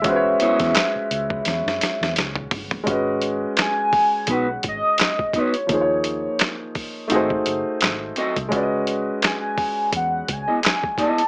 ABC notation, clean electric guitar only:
X:1
M:4/4
L:1/16
Q:"Swing 16ths" 1/4=85
K:G#phr
V:1 name="Clean electric guitar"
z2 [B,EGc]2 z12 | z8 [B,DFB] z4 z [B,DFB] z | z8 [^B,FAd] z4 z [B,FAd] z | z8 z3 [B,EGd] z2 [B,EGd] z |]